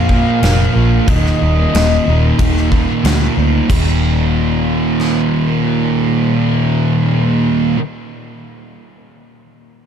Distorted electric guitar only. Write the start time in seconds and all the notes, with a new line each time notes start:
Already playing: A#2 F3
0.10 F3 A#3
0.41 A#2 F3 A#3
0.74 F3 A#3
1.07 D#2 A#2 D#3
1.40 A#2 D#3
1.73 D#2 A#2 D#3
2.06 A#2 D#3
2.38 D#2 A#2 D#3
2.70 D#3
2.75 A#2
3.02 D#2 A#2 D#3
3.36 A#2 D#3
3.69 D#2 A#2 D#3